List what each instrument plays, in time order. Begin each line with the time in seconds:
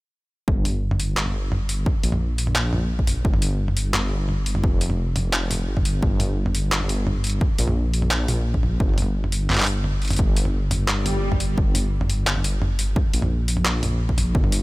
0.48 detuned saw bass G1, kick
0.65 closed hi-hat, mid tom
0.91 mid tom
1.00 closed hi-hat
1.17 detuned saw bass G1, clap
1.26 mid tom
1.52 mid tom
1.69 closed hi-hat
1.86 kick, mid tom
2.03 detuned saw bass A#1, closed hi-hat
2.12 mid tom
2.38 closed hi-hat
2.47 mid tom
2.55 clap
2.73 detuned saw bass A#1, mid tom
2.99 kick
3.07 closed hi-hat, mid tom
3.25 detuned saw bass G1, kick
3.34 mid tom
3.42 closed hi-hat
3.68 mid tom
3.77 closed hi-hat
3.94 detuned saw bass G1, clap, mid tom
4.29 mid tom
4.46 closed hi-hat
4.55 mid tom
4.64 detuned saw bass F1, kick
4.81 closed hi-hat
4.90 mid tom
5.15 detuned saw bass F1, closed hi-hat, mid tom
5.33 clap
5.51 closed hi-hat, mid tom
5.67 detuned saw bass G1
5.77 kick, mid tom
5.85 closed hi-hat
6.03 detuned saw bass G1, kick
6.20 closed hi-hat, mid tom
6.46 mid tom
6.55 closed hi-hat
6.72 detuned saw bass G1, clap
6.81 mid tom
6.89 closed hi-hat
7.07 mid tom
7.24 closed hi-hat
7.27 closed hi-hat
7.30 closed hi-hat
7.41 kick, mid tom
7.58 detuned saw bass A#1, closed hi-hat
7.68 mid tom
7.94 closed hi-hat
8.02 mid tom
8.11 clap
8.28 detuned saw bass A#1, closed hi-hat, mid tom
8.54 kick
8.63 mid tom
8.80 detuned saw bass G1, kick
8.89 mid tom
8.94 mid tom
8.98 closed hi-hat, mid tom
9.02 mid tom
9.24 mid tom
9.32 closed hi-hat
9.50 detuned saw bass G1, clap, mid tom
9.52 clap
9.55 clap
9.57 clap
9.60 clap
9.62 clap
9.64 clap, closed hi-hat
9.84 mid tom
10.02 closed hi-hat
10.05 closed hi-hat
10.08 closed hi-hat
10.10 closed hi-hat, mid tom
10.13 closed hi-hat
10.16 detuned saw bass G1, kick, closed hi-hat
10.37 closed hi-hat
10.45 mid tom
10.53 detuned saw bass G1
10.71 closed hi-hat, mid tom
10.88 clap, swell
11.06 closed hi-hat, mid tom
11.32 kick, mid tom
11.40 closed hi-hat
11.58 detuned saw bass G1, kick
11.75 closed hi-hat, mid tom
12.01 mid tom
12.10 closed hi-hat
12.27 detuned saw bass G1, clap
12.36 mid tom
12.44 closed hi-hat
12.62 mid tom
12.79 closed hi-hat
12.96 kick, mid tom
13.13 detuned saw bass A#1, closed hi-hat
13.22 mid tom
13.48 closed hi-hat
13.57 mid tom
13.65 clap
13.83 detuned saw bass A#1, closed hi-hat, mid tom
14.09 kick
14.18 closed hi-hat, mid tom
14.35 detuned saw bass G1, kick
14.44 mid tom
14.52 closed hi-hat